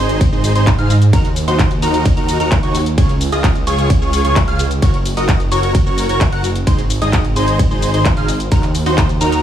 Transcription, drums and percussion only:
0.09 closed hi-hat, shaker
0.21 kick, closed hi-hat, ride, shaker
0.33 shaker
0.44 open hi-hat, shaker
0.56 closed hi-hat, shaker
0.67 kick, clap, closed hi-hat, ride, shaker
0.79 closed hi-hat, shaker
0.90 open hi-hat, shaker
1.02 closed hi-hat, shaker
1.13 kick, closed hi-hat, ride, shaker
1.25 closed hi-hat, shaker
1.36 open hi-hat, shaker
1.48 closed hi-hat, shaker
1.59 kick, clap, closed hi-hat, ride, shaker
1.71 closed hi-hat, shaker
1.82 open hi-hat, shaker
1.94 closed hi-hat, shaker
2.06 kick, closed hi-hat, ride, shaker
2.17 closed hi-hat, shaker
2.29 open hi-hat, shaker
2.40 closed hi-hat, shaker
2.52 kick, clap, closed hi-hat, ride, shaker
2.63 closed hi-hat, shaker
2.75 open hi-hat, shaker
2.86 closed hi-hat, shaker
2.98 kick, closed hi-hat, ride, shaker
3.09 closed hi-hat, shaker
3.21 open hi-hat, shaker
3.32 closed hi-hat, shaker
3.44 kick, clap, closed hi-hat, ride, shaker
3.55 closed hi-hat, shaker
3.67 open hi-hat, shaker
3.79 closed hi-hat, shaker
3.90 kick, closed hi-hat, ride, shaker
4.02 shaker
4.13 open hi-hat, shaker
4.25 closed hi-hat, shaker
4.36 kick, clap, closed hi-hat, ride, shaker
4.48 closed hi-hat, shaker
4.59 open hi-hat, shaker
4.71 closed hi-hat, shaker
4.82 kick, closed hi-hat, ride, shaker
4.94 closed hi-hat, shaker
5.05 open hi-hat, shaker
5.17 closed hi-hat, shaker
5.29 kick, clap, closed hi-hat, ride, shaker
5.40 closed hi-hat, shaker
5.52 open hi-hat, shaker
5.63 closed hi-hat, shaker
5.75 kick, closed hi-hat, ride, shaker
5.87 shaker
5.98 open hi-hat, shaker
6.09 closed hi-hat, shaker
6.21 kick, clap, closed hi-hat, ride, shaker
6.32 closed hi-hat, shaker
6.44 open hi-hat, shaker
6.56 closed hi-hat, shaker
6.67 kick, closed hi-hat, ride, shaker
6.79 closed hi-hat, shaker
6.90 open hi-hat, shaker
7.02 closed hi-hat, shaker
7.13 kick, clap, closed hi-hat, ride, shaker
7.25 closed hi-hat, shaker
7.36 open hi-hat, shaker
7.48 closed hi-hat, shaker
7.59 kick, closed hi-hat, ride, shaker
7.71 shaker
7.82 open hi-hat, shaker
7.94 closed hi-hat, shaker
8.05 kick, clap, closed hi-hat, ride, shaker
8.17 closed hi-hat, shaker
8.28 open hi-hat, shaker
8.40 closed hi-hat, shaker
8.52 kick, closed hi-hat, ride, shaker
8.63 clap, closed hi-hat, shaker
8.75 open hi-hat, shaker
8.86 open hi-hat, shaker
8.98 kick, clap, closed hi-hat, ride, shaker
9.09 closed hi-hat, shaker
9.21 open hi-hat, shaker
9.32 closed hi-hat, shaker

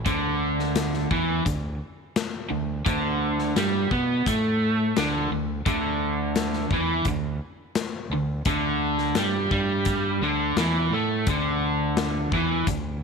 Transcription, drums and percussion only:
0.06 kick, closed hi-hat
0.59 snare
0.76 snare, closed hi-hat
0.94 snare
1.11 kick
1.46 kick, closed hi-hat
2.16 snare, closed hi-hat
2.86 kick, closed hi-hat
3.39 snare
3.56 snare, closed hi-hat
3.91 kick
4.26 kick, closed hi-hat
4.96 snare, closed hi-hat
5.66 kick, closed hi-hat
6.36 snare, closed hi-hat
6.54 snare
6.71 kick
7.05 kick, closed hi-hat
7.75 snare, closed hi-hat
8.45 kick, closed hi-hat
8.98 snare
9.15 snare, closed hi-hat
9.51 kick
9.85 kick, closed hi-hat
10.57 snare, closed hi-hat
11.27 kick, closed hi-hat
11.97 snare, closed hi-hat
12.32 kick
12.67 kick, closed hi-hat

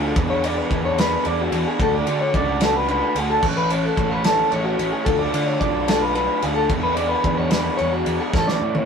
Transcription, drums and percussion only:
0.16 kick, ride
0.44 ride
0.71 kick, ride
0.98 snare, ride
1.25 ride
1.52 ride
1.80 kick, ride
2.07 ride
2.34 kick, ride
2.61 snare, ride
2.88 ride
3.16 ride
3.43 kick, crash
3.70 ride
3.97 kick, ride
4.24 snare, ride
4.52 ride
4.79 ride
5.06 kick, ride
5.34 ride
5.61 kick, ride
5.88 snare, ride
6.15 ride
6.42 ride
6.70 kick, ride
6.97 ride
7.24 kick, ride
7.51 snare, ride
7.79 ride
8.06 ride
8.34 kick, snare
8.48 snare
8.75 high tom

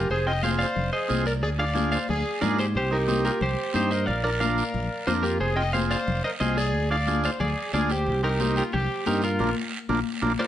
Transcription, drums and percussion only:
0.10 long guiro
0.43 high conga, short guiro
0.60 short guiro
0.76 low conga, long guiro
1.10 high conga, short guiro
1.26 short guiro
1.43 long guiro
1.75 high conga, short guiro
1.92 short guiro
2.08 low conga, long guiro
2.42 high conga, low conga, short guiro
2.59 short guiro
2.75 long guiro
3.08 high conga, short guiro
3.25 short guiro
3.41 low conga, long guiro
3.74 high conga, short guiro
3.91 short guiro
4.08 long guiro
4.40 high conga, short guiro
4.58 short guiro
4.74 low conga, long guiro
5.07 high conga, short guiro
5.24 short guiro
5.41 long guiro
5.74 high conga, short guiro
5.91 short guiro
6.07 low conga, long guiro
6.41 high conga, short guiro
6.58 short guiro
6.75 long guiro
7.07 high conga, short guiro
7.24 short guiro
7.40 low conga, long guiro
7.74 high conga, short guiro
7.90 short guiro
8.06 long guiro
8.40 high conga, short guiro
8.56 short guiro
8.72 low conga, long guiro
9.06 high conga, short guiro
9.22 short guiro
9.39 high conga, long guiro
9.89 high conga, long guiro
10.22 high conga, long guiro

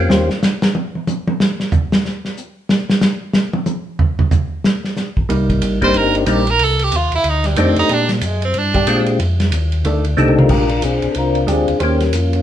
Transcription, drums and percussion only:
0.10 snare
0.30 snare
0.42 snare, hi-hat pedal
0.62 snare
0.75 high tom
0.95 high tom
1.07 hi-hat pedal, high tom
1.28 high tom
1.40 snare
1.60 snare
1.72 floor tom, hi-hat pedal
1.92 snare
2.05 snare
2.25 snare
2.37 hi-hat pedal
2.69 snare
2.90 snare
3.01 snare, hi-hat pedal
3.33 snare
3.53 high tom
3.66 hi-hat pedal, high tom
3.99 floor tom
4.19 floor tom
4.31 floor tom, hi-hat pedal
4.64 snare
4.84 snare
4.96 snare, hi-hat pedal
5.17 kick
5.30 ride
5.50 kick, ride
5.62 hi-hat pedal, ride
5.82 kick, ride
5.94 ride
6.15 ride
6.26 hi-hat pedal, ride
6.47 ride
6.59 ride
6.79 ride
6.92 hi-hat pedal, ride
7.12 ride
7.24 ride
7.44 snare, ride
7.56 hi-hat pedal, ride
7.76 ride
7.89 ride
8.09 snare, ride
8.21 hi-hat pedal, ride
8.42 ride
8.54 ride
8.74 kick, ride
8.87 hi-hat pedal, ride
9.06 ride
9.20 ride
9.40 snare, ride
9.52 hi-hat pedal, ride
9.72 ride
9.85 ride
10.04 ride
10.17 hi-hat pedal, mid tom
10.28 mid tom
10.39 mid tom
10.49 kick, crash
10.69 ride
10.82 hi-hat pedal, ride
11.02 ride
11.15 ride
11.35 ride
11.48 hi-hat pedal, ride
11.68 ride
11.80 ride
12.00 snare, ride
12.13 hi-hat pedal, ride
12.33 ride

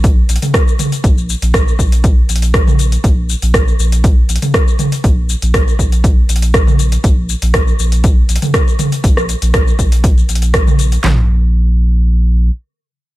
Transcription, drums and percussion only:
0.04 kick, closed hi-hat, shaker
0.29 closed hi-hat, shaker
0.36 closed hi-hat
0.42 closed hi-hat, mid tom, shaker
0.54 kick, cross-stick, closed hi-hat, shaker
0.68 shaker
0.79 closed hi-hat, mid tom, shaker
0.92 closed hi-hat, shaker
1.04 kick, closed hi-hat, shaker
1.18 shaker
1.30 shaker
1.42 closed hi-hat, shaker
1.54 kick, cross-stick, closed hi-hat, shaker
1.68 shaker
1.79 kick, shaker
1.92 closed hi-hat, shaker
2.04 kick, closed hi-hat, shaker
2.29 closed hi-hat, shaker
2.36 closed hi-hat
2.42 closed hi-hat, shaker
2.54 kick, cross-stick, closed hi-hat, shaker
2.67 mid tom, shaker
2.79 closed hi-hat, shaker
2.92 closed hi-hat, shaker
3.04 kick, closed hi-hat, shaker
3.30 shaker
3.42 closed hi-hat, shaker
3.54 kick, cross-stick, closed hi-hat, shaker
3.68 shaker
3.80 shaker
3.92 closed hi-hat, shaker
4.04 kick, closed hi-hat, shaker
4.29 closed hi-hat, shaker
4.36 closed hi-hat
4.42 closed hi-hat, mid tom, shaker
4.54 kick, cross-stick, closed hi-hat, shaker
4.68 shaker
4.79 closed hi-hat, mid tom, shaker
4.92 closed hi-hat, shaker
5.04 kick, closed hi-hat, shaker
5.30 shaker
5.42 closed hi-hat, shaker
5.54 kick, cross-stick, closed hi-hat, shaker
5.68 shaker
5.79 kick, shaker
5.92 closed hi-hat, shaker
6.04 kick, closed hi-hat, shaker
6.29 closed hi-hat, shaker
6.36 closed hi-hat
6.42 closed hi-hat, shaker
6.54 kick, cross-stick, closed hi-hat, shaker
6.67 mid tom, shaker
6.79 closed hi-hat, shaker
6.92 closed hi-hat, shaker
7.04 kick, closed hi-hat, shaker
7.29 shaker
7.42 closed hi-hat, shaker
7.54 kick, cross-stick, closed hi-hat, shaker
7.68 shaker
7.79 shaker
7.92 closed hi-hat, shaker
8.04 kick, closed hi-hat, shaker
8.29 closed hi-hat, shaker
8.36 closed hi-hat
8.42 closed hi-hat, mid tom, shaker
8.54 kick, cross-stick, closed hi-hat, shaker
8.68 shaker
8.79 closed hi-hat, mid tom, shaker
8.92 closed hi-hat, shaker
9.04 kick, closed hi-hat, shaker
9.17 cross-stick, shaker
9.29 closed hi-hat, shaker
9.42 closed hi-hat, shaker
9.54 kick, cross-stick, closed hi-hat, shaker
9.68 shaker
9.79 kick, closed hi-hat, shaker
9.92 closed hi-hat, shaker
10.04 kick, closed hi-hat, shaker
10.18 shaker
10.29 closed hi-hat, shaker
10.35 closed hi-hat
10.42 closed hi-hat, shaker
10.54 kick, cross-stick, closed hi-hat, shaker
10.67 mid tom, shaker
10.79 closed hi-hat, shaker
10.92 closed hi-hat, shaker
11.04 snare, clap, floor tom

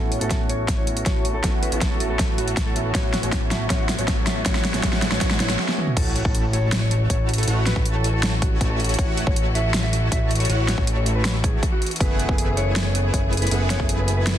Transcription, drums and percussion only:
0.12 closed hi-hat
0.21 closed hi-hat
0.31 kick, snare, closed hi-hat
0.49 closed hi-hat
0.68 kick, snare, closed hi-hat
0.87 closed hi-hat
0.97 closed hi-hat
1.06 kick, snare, closed hi-hat
1.25 closed hi-hat
1.44 kick, snare, closed hi-hat
1.63 closed hi-hat
1.72 closed hi-hat
1.81 kick, snare, closed hi-hat
2.00 closed hi-hat
2.19 kick, snare, closed hi-hat
2.38 closed hi-hat
2.48 closed hi-hat
2.57 kick, snare, closed hi-hat
2.76 closed hi-hat
2.95 kick, snare, closed hi-hat
3.14 snare, closed hi-hat
3.23 closed hi-hat
3.32 kick, snare, closed hi-hat
3.51 snare, closed hi-hat
3.70 kick, snare, closed hi-hat
3.89 snare, closed hi-hat
3.99 closed hi-hat
4.08 kick, snare, closed hi-hat
4.27 snare, closed hi-hat
4.46 kick, snare, closed hi-hat
4.55 snare
4.65 snare, closed hi-hat
4.74 snare, closed hi-hat
4.83 kick, snare, closed hi-hat
4.93 snare
5.02 snare, closed hi-hat
5.12 snare
5.21 kick, snare, closed hi-hat
5.31 snare
5.40 snare, closed hi-hat
5.50 snare, closed hi-hat
5.59 snare
5.68 snare
5.78 mid tom
5.87 mid tom
5.97 kick, closed hi-hat, crash
6.16 closed hi-hat
6.25 kick
6.35 closed hi-hat
6.53 closed hi-hat
6.72 snare, closed hi-hat
6.91 closed hi-hat
7.10 kick, closed hi-hat
7.29 closed hi-hat
7.34 closed hi-hat
7.38 closed hi-hat
7.43 closed hi-hat
7.48 closed hi-hat
7.67 snare, closed hi-hat
7.76 kick
7.85 closed hi-hat
8.04 closed hi-hat
8.23 snare, closed hi-hat
8.42 kick, closed hi-hat
8.61 kick, closed hi-hat
8.80 closed hi-hat
8.84 closed hi-hat
8.89 closed hi-hat
8.94 closed hi-hat
8.99 kick, closed hi-hat
9.17 closed hi-hat
9.27 kick
9.36 closed hi-hat
9.55 closed hi-hat
9.74 snare, closed hi-hat
9.93 closed hi-hat
10.12 kick, closed hi-hat
10.31 closed hi-hat
10.35 closed hi-hat
10.40 closed hi-hat
10.45 closed hi-hat
10.50 closed hi-hat
10.68 snare, closed hi-hat
10.78 kick
10.87 closed hi-hat
11.06 closed hi-hat
11.25 snare, closed hi-hat
11.44 kick, closed hi-hat
11.63 kick, closed hi-hat
11.82 closed hi-hat
11.86 closed hi-hat
11.91 closed hi-hat
11.96 closed hi-hat
12.00 kick, closed hi-hat
12.19 closed hi-hat
12.29 kick
12.38 closed hi-hat
12.57 closed hi-hat
12.76 snare, closed hi-hat
12.95 closed hi-hat
13.14 kick, closed hi-hat
13.33 closed hi-hat
13.37 closed hi-hat
13.42 closed hi-hat
13.47 closed hi-hat
13.51 closed hi-hat
13.70 snare, closed hi-hat
13.80 kick
13.89 closed hi-hat
14.08 closed hi-hat
14.27 snare, closed hi-hat

